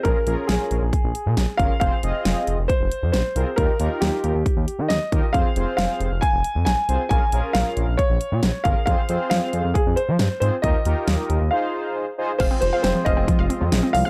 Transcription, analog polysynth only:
\new Staff \with { instrumentName = "Analog polysynth" } { \time 4/4 \key f \minor \tempo 4 = 136 <des' f' aes' bes'>16 r16 <des' f' aes' bes'>4~ <des' f' aes' bes'>16 r4. r16 <des' f' aes' bes'>16 r16 | <c' f' aes' c''>16 r16 <c' f' aes' ees''>4~ <c' f' aes' ees''>16 r4. r16 <c' f' aes' bes'>16 r16 | <ees' f' g' bes'>16 r16 <ees' f' g' bes'>4~ <ees' f' g' bes'>16 r4. r16 <ees' f' g' bes'>16 r16 | <c' f' aes' c''>16 r16 <c' f' aes' c''>4~ <c' f' aes' c''>16 r4. r16 <c' f' aes' c''>16 r16 |
<des' f' aes' bes'>16 r16 <des' f' aes' bes'>4~ <des' f' aes' bes'>16 r4. r16 <des' f' aes' bes'>16 r16 | <c' f' aes' c''>16 r16 <c' f' aes' c''>4~ <c' f' aes' c''>16 r4. r16 <c' f' aes' c''>16 r16 | <ees' f' g' bes'>16 r16 <ees' f' g' bes'>4~ <ees' f' g' bes'>16 r16 <ees' f' aes' c''>4~ <ees' f' aes' c''>16 r16 <ees' f' aes' c''>16 r16 | <c' f' aes' c''>8 r16 <c' f' aes' c''>4~ <c' f' aes' c''>16 r4. r16 <c' f' aes' c''>16 | }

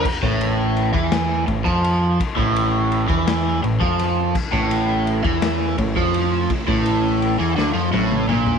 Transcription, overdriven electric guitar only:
\new Staff \with { instrumentName = "Overdriven electric guitar" } { \clef bass \time 6/8 \tempo 4. = 56 r16 a,4 e8. a,16 f8. | r16 a,4 e8. a,16 f8. | r16 a,4 e8. a,16 f8. | r16 a,4 e16 d16 f16 a,8 bes,8 | }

